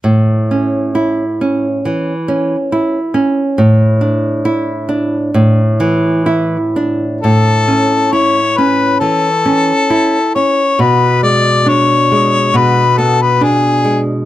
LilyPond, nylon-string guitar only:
\new Staff \with { instrumentName = "Nylon-string guitar" } { \time 4/4 \key a \major \tempo 4 = 68 a,8 cis'8 e'8 cis'8 e8 cis'8 e'8 cis'8 | a,8 d'8 e'8 d'8 a,8 e8 e'8 d'8 | a,8 cis'8 e'8 cis'8 e8 cis'8 e'8 cis'8 | b,8 gis8 d'8 gis8 b,8 b8 d'8 gis8 | }